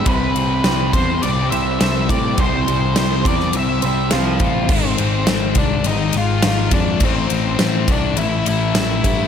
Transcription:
<<
  \new Staff \with { instrumentName = "Lead electric guitar" } { \time 4/4 \key a \minor \tempo 4 = 104 b'4. c''8 d''8 e''8 e''8 d''8 | c''4. d''8 e''4 <f' c''>4 | c'4. d'8 ees'8 f'8 f'8 d'8 | c'4. d'8 e'8 e'8 e'4 | }
  \new Staff \with { instrumentName = "Clean electric guitar" } { \time 4/4 \key a \minor <c e g c' e' c''>8 <g c' e' c''>8 <g c' e' c''>8 <g c' e' c''>4 <g c' e' c''>8 <g c' e' c''>4 | <c e g c' e' c''>8 <g c' e' c''>8 <g c' e' c''>8 <g c' e' c''>4 <g c' e' c''>8 <g c' e' c''>4 | r1 | r1 | }
  \new Staff \with { instrumentName = "Distorted electric guitar" } { \clef bass \time 4/4 \key a \minor <c g c'>8 <g c'>8 <c g c'>8 <g c'>8 <c g c'>8 <g c'>8 <c g c'>8 <g c'>8 | <c g c'>8 <g c'>8 <c g c'>8 <g c'>8 <c g c'>8 <g c'>8 <c g c'>8 <g c'>8 | <aes, ees aes>8 <ees aes>8 <aes, ees aes>8 <ees aes>8 <aes, ees aes>8 <ees aes>8 <aes, ees aes>8 <ees aes>8 | <a, e a>8 <e a>8 <a, e a>8 <e a>8 <a, e a>8 <e a>8 <a, e a>8 <e a>8 | }
  \new Staff \with { instrumentName = "Picked electric bass" } { \clef bass \time 4/4 \key a \minor c,8 c,8 c,8 e,8 c,8 c,8 c,8 a,8 | c,8 c,8 c,8 e,8 c,8 c,8 c,8 a,,8 | aes,,8 aes,,8 aes,,8 c,8 aes,,8 aes,,8 aes,,8 f,8 | a,,8 a,,8 a,,8 c,8 a,,8 a,,8 a,,8 g,8 | }
  \new DrumStaff \with { instrumentName = "Drums" } \drummode { \time 4/4 <bd cymr>8 cymr8 <cymr sn>8 <bd cymr>8 cymr8 cymr8 <cymr sn>8 <bd cymr>8 | <bd cymr>8 cymr8 <cymr sn>8 <bd cymr>16 sn16 cymr8 cymr8 <cymr sn>8 <bd cymr>8 | <cymc bd>8 cymr8 <cymr sn>8 <bd cymr>8 cymr8 cymr8 <cymr sn>8 <bd cymr>8 | <bd cymr>8 cymr8 <cymr sn>8 <bd cymr>8 cymr8 cymr8 <cymr sn>8 <bd cymr>8 | }
>>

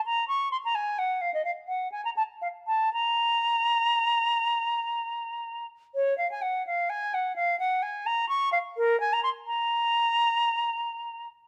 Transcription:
\new Staff \with { instrumentName = "Flute" } { \time 12/8 \key bes \minor \tempo 4. = 85 bes''8 des'''8 c'''16 bes''16 aes''8 ges''8 f''16 ees''16 f''8 ges''8 aes''16 bes''16 a''8 f''8 a''8 | bes''1~ bes''4. r8 | des''8 f''16 aes''16 ges''8 f''8 aes''8 ges''8 f''8 ges''8 aes''8 bes''8 des'''8 f''8 | bes'8 aes''16 bes''16 c'''8 bes''1 r8 | }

